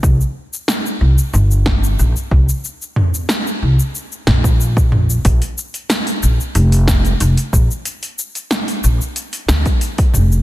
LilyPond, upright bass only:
\new Staff \with { instrumentName = "Upright bass" } { \clef bass \time 4/4 \key bes \major \tempo 4 = 92 c,8 r4 c,8 g,,4 bes,,8 c,8 | r4. c,8 r8 bes,,4. | bes,,8 r4 bes,,8 f,,4 f,,8 bes,,8 | r4. bes,,8 r8 d,8 r8 f,,8 | }